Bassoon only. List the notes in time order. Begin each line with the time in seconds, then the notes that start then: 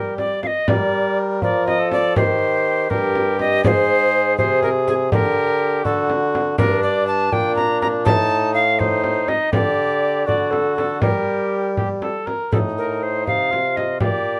Already playing: G3
0.68 G3
1.42 F3
2.17 D#3
2.90 G2
3.65 G#2
4.38 C3
5.12 D3
5.85 D3
6.59 G2
7.32 A#2
8.06 A2
9.53 D3
10.27 D3
11.02 G3
12.53 A2
13.27 C3
14.00 A#2